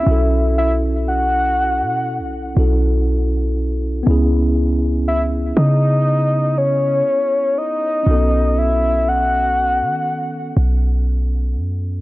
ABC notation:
X:1
M:4/4
L:1/16
Q:1/4=60
K:Bmix
V:1 name="Soft synth lead"
e2 e2 f6 z6 | z4 e2 d4 c4 d2- | d2 e2 f6 z6 |]
V:2 name="Tine electric piano"
[CEFA]8- [CEFA]2 [CEFA]6 | [B,CEG]16 | [B,CDFA]16 |]
V:3 name="808-style bass" clef=bass
B,,,6- B,,, B,,3/2 B,,,3/2 B,,,6 | C,,6 C,6 z4 | B,,,6- B,,, D,3 B,,,4 F,,2 |]